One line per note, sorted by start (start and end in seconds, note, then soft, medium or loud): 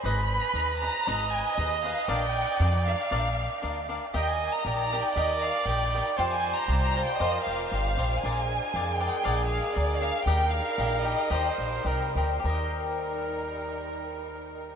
0.02 0.38 G#1 medium
0.02 0.21 D#4 medium
0.02 0.21 G#4 medium
0.02 1.09 B4 loud
0.02 0.21 B4 medium
0.02 0.21 D#5 medium
0.02 0.78 B5 loud
0.54 0.88 D#2 medium
0.54 0.72 D#4 medium
0.54 0.72 G#4 medium
0.54 0.72 B4 medium
0.54 0.72 D#5 medium
0.79 0.98 D#4 medium
0.79 0.97 G#4 medium
0.79 1.28 A#5 loud
0.83 0.98 B4 medium
0.83 0.98 D#5 medium
1.07 1.41 G#1 medium
1.07 1.24 D#4 medium
1.07 1.24 G#4 medium
1.07 1.24 B4 medium
1.07 2.12 D#5 loud
1.07 1.24 D#5 medium
1.30 1.57 G#5 medium
1.54 1.91 D#2 loud
1.54 1.74 D#4 medium
1.54 1.83 D#5 medium
1.59 1.75 G#4 medium
1.59 1.75 B4 medium
1.59 1.75 D#5 medium
1.82 1.99 D#4 medium
1.82 2.00 G#4 medium
1.82 2.00 B4 medium
1.82 2.00 D#5 medium
1.82 2.09 F5 medium
2.07 2.42 A#1 medium
2.07 2.25 D4 medium
2.07 2.25 A#4 medium
2.07 2.25 D5 medium
2.07 3.90 D5 loud
2.07 2.26 F5 medium
2.07 2.82 G5 loud
2.60 2.93 F2 loud
2.60 2.76 D4 medium
2.60 2.77 A#4 medium
2.60 2.77 D5 medium
2.60 2.77 F5 medium
2.85 3.02 D4 medium
2.85 3.02 A#4 medium
2.85 3.02 D5 medium
2.85 3.85 F5 loud
2.85 3.02 F5 medium
3.11 3.45 A#1 loud
3.11 3.27 D4 medium
3.11 3.28 A#4 medium
3.11 3.28 D5 medium
3.11 3.28 F5 medium
3.62 3.97 D2 medium
3.62 3.79 D4 medium
3.62 3.79 A#4 medium
3.62 3.79 D5 medium
3.62 3.79 F5 medium
3.89 4.04 D4 medium
3.89 4.04 A#4 medium
3.89 4.05 D5 medium
3.89 4.05 F5 medium
4.13 4.48 D#2 medium
4.13 8.19 G3 medium
4.13 6.17 D#4 medium
4.13 4.30 G4 medium
4.13 6.17 A#4 medium
4.13 4.31 A#4 medium
4.13 4.31 D#5 medium
4.13 4.63 D#5 loud
4.13 4.27 G5 loud
4.13 4.31 G5 medium
4.27 4.53 G#5 medium
4.52 4.77 A#5 medium
4.65 4.98 A#1 medium
4.65 4.82 G4 medium
4.65 4.82 A#4 medium
4.65 6.19 D5 loud
4.65 4.82 D#5 medium
4.65 4.83 G5 medium
4.78 5.02 A#5 loud
4.93 5.08 G4 medium
4.93 5.08 A#4 medium
4.93 5.08 D#5 medium
4.93 5.08 G5 medium
5.03 5.16 G5 medium
5.16 5.50 D#2 medium
5.16 5.32 G4 medium
5.16 5.33 A#4 medium
5.16 5.41 D#5 medium
5.16 5.33 D#5 medium
5.16 5.33 G5 loud
5.42 5.67 F5 medium
5.65 6.00 A#1 medium
5.65 5.84 G4 medium
5.65 5.84 A#4 medium
5.65 5.84 D#5 medium
5.65 6.06 G5 loud
5.65 5.84 G5 medium
5.94 6.09 G4 medium
5.94 6.10 A#4 medium
5.94 6.10 D#5 medium
5.94 6.10 G5 medium
6.16 6.52 F2 medium
6.16 8.20 F4 medium
6.16 6.35 F4 medium
6.16 6.35 G4 medium
6.16 8.20 C5 medium
6.16 7.23 C5 loud
6.16 6.35 C5 medium
6.16 6.35 F5 medium
6.16 6.24 G5 loud
6.29 6.54 G#5 loud
6.55 6.79 A#5 medium
6.68 7.02 C2 loud
6.68 6.85 F4 medium
6.68 6.86 G4 medium
6.68 6.86 C5 medium
6.68 6.86 F5 medium
6.80 7.05 A#5 loud
6.96 7.11 F4 medium
6.96 7.11 G4 medium
6.96 7.11 C5 medium
6.96 7.12 F5 medium
7.05 7.18 G5 loud
7.18 7.38 F2 medium
7.18 7.36 F4 medium
7.18 7.36 G4 medium
7.18 7.99 A#4 medium
7.18 7.37 C5 medium
7.18 7.44 D#5 loud
7.18 7.37 F5 medium
7.43 7.69 F1 medium
7.43 7.66 F5 medium
7.68 8.17 F5 medium
7.72 7.96 G1 medium
7.72 7.88 F4 medium
7.72 7.88 G4 medium
7.72 7.88 C5 medium
7.72 7.88 F5 medium
7.98 8.20 A#1 medium
7.98 8.13 F4 medium
7.98 8.13 G4 medium
7.98 8.14 C5 medium
7.98 8.13 F5 medium
8.19 10.24 G#3 medium
8.19 10.24 D4 medium
8.19 12.39 A#4 medium
8.19 8.99 G#5 loud
8.23 8.57 A#1 medium
8.23 10.23 G#4 medium
8.23 8.40 G#4 medium
8.23 8.40 A#4 medium
8.23 8.40 D5 medium
8.23 8.41 F5 medium
8.74 9.07 F2 medium
8.74 8.90 G#4 medium
8.74 8.91 A#4 medium
8.74 8.91 D5 medium
8.74 8.91 F5 medium
8.97 9.15 G#4 medium
8.97 9.15 A#4 medium
8.97 9.16 D5 medium
8.97 9.50 G5 loud
9.01 9.16 F5 medium
9.24 9.59 A#1 loud
9.24 9.40 G#4 medium
9.24 9.41 A#4 medium
9.24 9.41 D5 medium
9.24 9.41 F5 medium
9.48 9.73 F5 medium
9.73 10.09 D2 medium
9.73 9.92 G#4 medium
9.73 9.92 A#4 medium
9.73 10.01 D5 medium
9.73 9.92 D5 medium
9.73 9.92 F5 medium
9.99 10.17 G#4 medium
9.99 10.17 A#4 medium
9.99 10.18 D5 medium
9.99 10.26 F5 loud
9.99 10.18 F5 medium
10.25 10.60 D#2 medium
10.25 12.42 G3 medium
10.25 12.42 D#4 medium
10.25 10.43 G4 medium
10.25 10.43 A#4 medium
10.25 10.43 D#5 medium
10.25 10.51 G5 loud
10.25 10.43 G5 medium
10.30 11.33 A#4 loud
10.52 11.05 F5 medium
10.78 11.12 A#1 loud
10.78 10.95 G4 soft
10.78 10.95 A#4 medium
10.78 10.95 D#5 medium
10.78 10.95 G5 medium
11.04 11.20 G4 medium
11.04 11.20 A#4 medium
11.04 11.86 D#5 medium
11.04 11.21 D#5 medium
11.04 11.21 G5 medium
11.30 11.49 D#2 medium
11.30 11.47 G4 medium
11.30 11.48 A#4 medium
11.30 11.89 C5 loud
11.30 11.48 D#5 medium
11.30 11.48 G5 medium
11.58 11.83 A#1 medium
11.85 12.12 C2 medium
11.85 12.03 G4 medium
11.85 12.04 A#4 medium
11.85 12.14 A#4 medium
11.85 12.04 D#5 medium
11.85 12.04 G5 medium
12.15 12.41 D2 medium
12.15 12.33 G4 medium
12.15 12.42 A#4 medium
12.15 12.34 A#4 medium
12.15 12.34 D#5 medium
12.15 12.34 G5 medium
12.40 14.75 G4 medium
12.40 14.75 A#4 medium
12.44 14.75 D#2 medium
12.44 14.75 G3 medium
12.44 14.75 D#4 medium
12.44 14.75 A#4 medium
12.50 14.75 D#5 medium
12.54 14.75 G5 medium